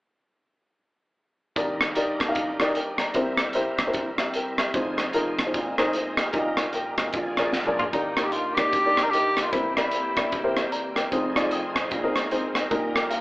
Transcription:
1.56 D#2 D#3 G3 D4 D#4 G4 A#4 D5, kick, closed hi-hat
1.81 cross-stick, closed hi-hat
1.95 D#4 G4 A#4 D5, closed hi-hat
2.20 kick, cross-stick, closed hi-hat
2.28 D#4 G4 A#4 F5
2.35 kick, closed hi-hat
2.60 D#4 G4 A#4 D5, cross-stick, closed hi-hat
2.75 A#4 G5, closed hi-hat
2.98 D5 A#5, cross-stick, closed hi-hat
3.14 C2 C3 G3 C4 E4 G4 A#4 C5, kick, closed hi-hat
3.37 cross-stick, closed hi-hat
3.53 E4 G4 A#4 C5, closed hi-hat
3.78 kick, cross-stick, closed hi-hat
3.87 E4 G4 A#4 C5
3.93 kick, closed hi-hat
4.18 G4 E5, cross-stick, closed hi-hat
4.34 A#4 G5, closed hi-hat
4.58 G4 E5, cross-stick, closed hi-hat
4.74 F1 F2 F3 D#4 F4 G#4 C5, kick, closed hi-hat
4.98 cross-stick, closed hi-hat
5.13 D#4 F4 G#4 A#4, closed hi-hat
5.39 kick, cross-stick, closed hi-hat
5.46 D#4 F4 G#4 C5
5.54 A#1 A#2 G#3 A#4, kick, closed hi-hat
5.78 D#4 G#4 A#4 C5, cross-stick, closed hi-hat
5.93 D#4 C5, closed hi-hat
6.17 G4 D#5, cross-stick, closed hi-hat
6.33 A#1 A#2 G3 A#3 D#4 G4 A#4 D#5, kick, closed hi-hat
6.57 cross-stick, closed hi-hat
6.73 A#4 G5, closed hi-hat
6.98 G4 D#5, kick, cross-stick, closed hi-hat
7.13 A#1 A#2 F3 D4 G#4, kick, closed hi-hat
7.37 F4 G#4 A#4 D5, cross-stick, closed hi-hat
7.53 snare
7.66 F4 G#4 A#4 D5, mid tom
7.79 F4, floor tom
7.91 D#2 D#3 A#3 D4 D#4 G4 A#4 D5, kick, closed hi-hat
8.17 D#4 G4 A#4 D#5, cross-stick, closed hi-hat
8.24 G4
8.32 F4, closed hi-hat
8.54 D#4 G4 A#4, kick, cross-stick, closed hi-hat
8.58 D5
8.73 kick, closed hi-hat
8.85 D#4 G4 A#4 D5
8.97 cross-stick, closed hi-hat
9.03 A#4
9.11 D#4 G4 A#4 D#5, closed hi-hat
9.37 cross-stick, closed hi-hat
9.43 F4
9.52 C2 C3 E3 A#3 C4 E4 G4 A#4 C5, kick, closed hi-hat
9.76 E4 G4 A#4 D5, cross-stick, closed hi-hat
9.91 closed hi-hat
10.16 E4 G4 A#4 D5, kick, cross-stick, closed hi-hat
10.32 kick, closed hi-hat
10.44 E4 G4 A#4 C5
10.56 cross-stick, closed hi-hat
10.72 D5 A#5, closed hi-hat
10.96 A#4 G5, cross-stick, closed hi-hat
11.11 F1 F2 F3 C4 D#4 F4 G#4 C5, kick, closed hi-hat
11.36 D#4 F4 G#4 D5, cross-stick, closed hi-hat
11.51 G5 D#6, closed hi-hat
11.76 C5 G#5, kick, cross-stick, closed hi-hat
11.91 A#1 A#2 G#3 A#4, kick, closed hi-hat
12.04 C4 D#4 G#4 A#4
12.16 cross-stick, closed hi-hat
12.31 C4 D#4 G#4 C5, closed hi-hat
12.55 cross-stick, closed hi-hat
12.70 A#1 A#2 G3 A#3 D#4 G4 A#4, kick, closed hi-hat
12.95 A#4 G5, cross-stick, closed hi-hat
13.10 F5, closed hi-hat

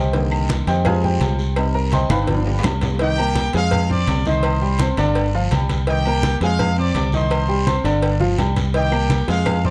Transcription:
Already playing: C2 G4 C5 D#5 G5
0.13 D3 D#3 A#3, cowbell, high conga, long guiro
0.31 high conga, low agogo, claves
0.49 cowbell, high conga, low timbale, short guiro
0.67 F2 G4 C5 D#5 G5, cowbell, high conga, short guiro
0.85 G3 G#3 F4 G#4 C5 F5 G#5, cowbell, high conga, low conga, low agogo, long guiro, claves
1.04 G4 C5 G5, high conga, low conga
1.20 C2, cowbell, high conga, low timbale, low agogo, short guiro
1.39 short guiro
1.56 G3 C4 D#4, cowbell, high conga, low agogo, long guiro, claves
1.75 A#4 A#5, high conga
1.92 C5 D#5 G5 C6, cowbell, high conga, low timbale, low agogo, short guiro
2.10 G1 B4 F5 G5 B5, cowbell, high conga, high timbale, low agogo, short guiro, claves
2.22 high timbale
2.27 F3 B3 D4, cowbell, high conga, low agogo, long guiro
2.35 high timbale
2.47 low timbale
2.59 low timbale
2.63 C2, cowbell, low conga, low agogo, short guiro, claves
2.71 low timbale
2.81 cowbell, low conga, low timbale, low agogo, short guiro
2.95 low timbale
2.99 D#3 D#4 G4 D#5 G5, cowbell, high conga, long guiro
3.17 A#3 A#4 A#5, high conga, low agogo
3.35 cowbell, high conga, low timbale, short guiro
3.53 F2 G#3 G#4 F5 G#5, cowbell, high conga, short guiro
3.71 cowbell, high conga, low conga, low agogo, long guiro
3.89 C4 C5 D5 C6 D6, high conga, low conga
4.07 C2, cowbell, high conga, low timbale, low agogo, short guiro
4.25 D#3 D#4 C5 D#5 C6, high conga, short guiro
4.43 cowbell, high conga, low agogo, long guiro
4.62 G3 G4 G5, high conga
4.79 C4 C5 C6, cowbell, high conga, low timbale, low agogo, short guiro
4.97 G1 D3 D4 D5, cowbell, high conga, low agogo, short guiro
5.15 cowbell, high conga, low agogo, long guiro
5.34 F3 F4 F5, high conga
5.51 C2 G3 G4 G5, cowbell, high conga, low timbale, low agogo, short guiro
5.69 cowbell, high conga, low agogo, short guiro
5.87 D#3 D#4 G4 D#5 G5, cowbell, high conga, long guiro
6.05 A#3 A#4 A#5, high conga, low agogo
6.23 cowbell, high conga, low timbale, short guiro
6.41 F2 G#3 G#4 F5 G#5, cowbell, high conga, short guiro
6.59 cowbell, high conga, low conga, low agogo, long guiro
6.78 C4 C5 D5 C6 D6, high conga
6.94 C2, cowbell, high conga, low timbale, low agogo, short guiro
7.12 D#3 D#4 C5 D#5 C6, high conga, short guiro
7.30 cowbell, high conga, low agogo, long guiro
7.49 G3 G4 G5, high conga
7.67 C4 C5 C6, cowbell, high conga, low timbale, low agogo, short guiro
7.84 G1 D3 D4 D5, cowbell, high conga, low agogo, short guiro
8.03 cowbell, high conga, low agogo, long guiro
8.20 F3 F4 F5, high conga
8.38 C2 G3 G4 G5, cowbell, low conga, low timbale, low agogo, short guiro
8.56 cowbell, low conga, low agogo, short guiro
8.74 D#3 D#4 G4 D#5 G5, cowbell, high conga, long guiro
8.92 A#3 A#4 A#5, high conga, low agogo, claves
9.10 cowbell, high conga, low timbale, short guiro
9.28 F2 G#3 G#4 F5 G#5, cowbell, high conga, short guiro
9.46 cowbell, high conga, low conga, low agogo, long guiro, claves
9.64 C4 C5 D5 C6 D6, high conga, low conga

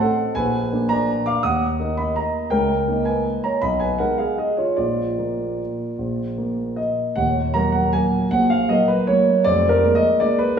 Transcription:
Already playing: C4 D#4
0.00 A4 F#5
0.35 A#1 B4 G#5
0.72 A#3 D4
0.89 D5 A#5
1.26 F5 D6
1.43 D#2 F#5 D#6
1.80 A#3 D#4
1.97 D#5 B5
2.16 D#5 A#5
2.50 C#2 A#4 G5
2.87 A#3 D#4
3.05 B4 G#5
3.44 C#5 A#5
3.62 B1 D#5 B5
3.80 B4 G#5
3.98 G#3 D#4 A#4 F#5
4.18 G#4 F5
4.38 G#4 D#5
4.57 F4 C#5
4.76 A#1 F4 D5
5.18 A#3
5.99 A#1
6.38 A#3
6.76 D#5
7.16 D#1 D#2 F#5
7.54 F#3 A#3 A#5
7.72 F#5
7.93 F#3 A#3 G#5
8.31 A#1 A#2 F#5
8.50 F5
8.69 F#3 A#3 D#5
8.88 B4
9.07 F#3 A#3 C#5
9.44 F1 F2 D5
9.69 A#4
9.84 G#3 A#3
9.95 D#5
10.20 G#3 A#3 D5
10.39 B4

